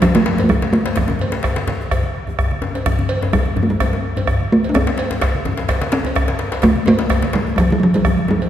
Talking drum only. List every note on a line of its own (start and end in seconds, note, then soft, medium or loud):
0.02 0.17 F3 medium
0.15 0.44 A3 medium
0.44 0.51 A3 medium
0.49 0.74 G3 medium
0.73 1.44 A3 medium
3.33 3.60 G3 medium
3.63 3.72 A3 medium
3.70 4.54 G3 medium
4.52 4.71 A3 medium
4.69 4.78 D4 medium
4.76 5.70 C4 medium
5.93 6.37 C4 loud
6.64 6.86 A3 loud
6.88 7.37 A3 medium
7.36 7.56 G3 medium
7.56 7.74 F3 medium
7.56 7.61 G3 medium
7.72 7.80 G3 medium
7.80 7.97 F3 medium
7.80 7.85 G3 medium
7.96 8.08 G3 medium
8.06 8.32 F3 medium
8.31 8.46 G3 medium
8.46 8.49 G3 soft